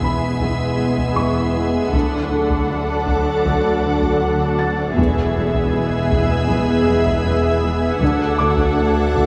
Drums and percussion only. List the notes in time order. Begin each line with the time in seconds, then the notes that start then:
0.02 taiko
0.40 taiko
0.97 taiko
1.93 taiko
2.50 taiko
3.07 taiko
3.45 taiko
4.02 taiko
4.97 taiko
5.54 taiko
6.11 taiko
6.49 taiko
7.06 taiko
8.01 taiko
8.58 taiko
9.14 taiko